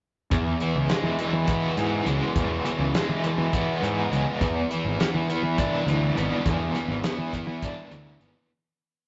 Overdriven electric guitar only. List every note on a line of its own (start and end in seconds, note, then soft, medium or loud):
0.31 1.78 E2 medium
0.61 1.18 E3 medium
0.90 2.05 G#3 medium
1.20 1.76 E3 medium
1.48 3.53 B3 medium
1.78 2.64 E3 medium
2.06 2.93 G#3 medium
2.36 3.82 E2 medium
2.65 3.22 E3 medium
2.95 4.09 G#3 medium
3.24 3.81 E3 medium
3.53 5.00 B3 medium
3.82 4.41 E3 medium
4.10 4.40 G#3 medium
4.41 5.87 E2 medium
4.71 5.28 E3 medium
5.00 6.17 B3 medium
5.29 5.87 E3 medium
5.58 7.04 D4 medium
5.88 6.75 E3 medium
6.17 7.03 B3 medium
6.47 7.92 E2 medium
6.76 7.33 E3 medium
7.04 8.19 B3 medium
7.34 7.91 E3 medium
7.63 8.50 D4 medium
7.92 8.50 E3 medium
8.20 8.50 B3 medium